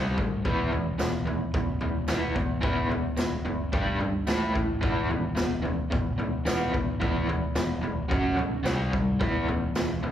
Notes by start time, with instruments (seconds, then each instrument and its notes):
Already playing: picked electric bass C2, overdriven electric guitar C3 G3 C4
0.18 picked electric bass D2, overdriven electric guitar C3 G3, kick, floor tom
0.45 picked electric bass E1, overdriven electric guitar E3 B3 E4, kick, floor tom
0.72 picked electric bass E1, overdriven electric guitar E3 B3, floor tom
0.98 picked electric bass E1, overdriven electric guitar E3 B3, snare, floor tom, tambourine
1.25 overdriven electric guitar E3 B3, floor tom
1.54 picked electric bass E1, overdriven electric guitar E3 B3, kick, floor tom
1.81 picked electric bass E1, overdriven electric guitar E3 B3, floor tom
2.08 picked electric bass E1, overdriven electric guitar E3 B3 E4, snare, floor tom, tambourine
2.35 picked electric bass B1, overdriven electric guitar E3 B3, kick, floor tom
2.61 picked electric bass E1, overdriven electric guitar E3 B3 E4, kick, floor tom
2.89 overdriven electric guitar E3 B3, floor tom
3.17 picked electric bass E1, overdriven electric guitar E3 B3, snare, floor tom, tambourine
3.45 picked electric bass F#1, overdriven electric guitar E3 B3, floor tom
3.72 picked electric bass G1, overdriven electric guitar G3 D4 G4, kick, floor tom
4.00 picked electric bass G1, overdriven electric guitar G3 D4, floor tom
4.27 picked electric bass A1, overdriven electric guitar A3 E4 A4, snare, floor tom, tambourine
4.54 picked electric bass A1, overdriven electric guitar A3 E4, kick, floor tom
4.81 picked electric bass E1, overdriven electric guitar E3 B3 E4, kick, floor tom
5.09 picked electric bass E1, overdriven electric guitar E3 B3, floor tom
5.35 picked electric bass E1, overdriven electric guitar E3 B3, snare, floor tom, tambourine
5.62 overdriven electric guitar E3 B3, floor tom
5.91 picked electric bass E1, overdriven electric guitar E3 B3, kick, floor tom
6.17 picked electric bass E1, overdriven electric guitar E3 B3, floor tom
6.45 picked electric bass E1, overdriven electric guitar E3 B3 E4, snare, floor tom, tambourine
6.74 picked electric bass B1, overdriven electric guitar E3 B3, kick, floor tom
7.00 picked electric bass E1, overdriven electric guitar E3 B3 E4, kick, floor tom
7.29 overdriven electric guitar E3 B3, floor tom
7.55 picked electric bass E1, overdriven electric guitar E3 B3, snare, floor tom, tambourine
7.82 picked electric bass E1, overdriven electric guitar E3 B3, floor tom
8.09 picked electric bass F#1, overdriven electric guitar F#3 C#4 F#4, kick, floor tom
8.36 picked electric bass B1, overdriven electric guitar F#3 C#4, floor tom
8.63 picked electric bass C2, overdriven electric guitar C3 G3 C4, snare, floor tom, tambourine
8.93 picked electric bass C2, overdriven electric guitar C3 G3, kick, floor tom
9.20 picked electric bass E1, overdriven electric guitar E3 B3 E4, kick, floor tom
9.47 picked electric bass E1, overdriven electric guitar E3 B3, floor tom
9.75 picked electric bass E1, overdriven electric guitar E3 B3, snare, floor tom, tambourine
10.03 overdriven electric guitar E3 B3, floor tom